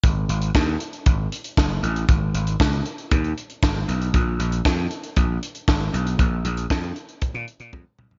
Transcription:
<<
  \new Staff \with { instrumentName = "Slap bass" } { \clef bass \time 4/4 \key gis \dorian \tempo 4 = 117 gis,,8 gis,,8 dis,8 r8 gis,,8 r8 fis,,8 a,,8 | gis,,8 gis,,8 cis,8 r8 dis,8 r8 gis,,8 b,,8 | ais,,8 ais,,8 eis,8 r8 ais,,8 r8 gis,,8 b,,8 | ais,,8 ais,,8 eis,8 r8. ais,16 r16 ais,16 eis,16 r16 bis,,16 b,,16 | }
  \new DrumStaff \with { instrumentName = "Drums" } \drummode { \time 4/4 <hh bd>8 hh16 hh16 <bd sn>8 hh16 hh16 <hh bd>8 hh16 hh16 <bd sn>8 hh16 hh16 | <hh bd>8 hh16 hh16 <bd sn>16 hh16 hh16 hh16 <hh bd>16 hh16 hh16 hh16 <bd sn>8 hh16 hh16 | <hh bd>8 hh16 hh16 <bd sn>8 hh16 hh16 <hh bd>8 hh16 hh16 <bd sn>8 hh16 hh16 | <hh bd>8 hh16 hh16 <bd sn>16 hh16 hh16 hh16 <hh bd>16 hh16 hh16 hh16 <bd tommh>8 toml16 tomfh16 | }
>>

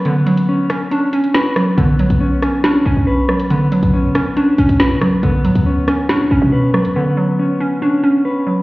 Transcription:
<<
  \new Staff \with { instrumentName = "Clean electric guitar" } { \time 4/4 \key b \minor \tempo 4 = 139 <b cis' b'>4 cis'4 cis'4 b'4 | b4 cis'4 cis'4 b'4 | b4 cis'4 cis'4 b'4 | b4 cis'4 cis'4 b'4 |
b4 cis'4 cis'4 b'4 | }
  \new Staff \with { instrumentName = "Synth pluck" } { \time 4/4 \key b \minor <d fis cis' d'>8 fis4 cis'8 d'8 cis'4 fis8 | d8 fis4 cis'8 d'8 cis'4 fis8 | d8 fis4 cis'8 d'8 cis'4 fis8 | d8 fis4 cis'8 d'8 cis'4 fis8 |
d8 fis4 cis'8 d'8 cis'4 fis8 | }
  \new Staff \with { instrumentName = "808-style bass" } { \clef bass \time 4/4 \key b \minor r1 | b,,8. b,,4 r8. b,,16 b,,4~ b,,16~ | b,,8. b,,8 d16 b,,16 r8. b,,16 b,,8 d16. b,,16. | b,,8 b,16 d,4~ d,16 b,8 b,,16 b,4 d,16 |
r1 | }
  \new DrumStaff \with { instrumentName = "Drums" } \drummode { \time 4/4 hh8 hh16 hh16 r8 <hh ss>8 hh8 hh16 hh16 sn8 <hh ss>8 | hh8 hh16 hh16 r8 <hh ss>8 <hh sn>4 r8 ss16 hh16 | hh8 hh16 hh16 r8 <hh ss>8 hh8 hh16 hh16 sn8 <hh ss>8 | hh8 hh16 hh16 r8 <hh ss>8 <hh sn>4 r8 ss16 hh16 |
r4 r4 r4 r4 | }
>>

